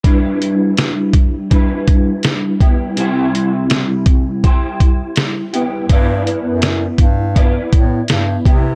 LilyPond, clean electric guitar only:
\new Staff \with { instrumentName = "Clean electric guitar" } { \time 4/4 \key g \major \tempo 4 = 82 <g d' e' b'>2 <g d' e' b'>4. <b e' g'>8 | <c g e' g' c''>2 <e' g' c''>4. <b e' g'>8 | <b e' b' d''>2 <b e' b' d''>4. <b e' g'>8 | }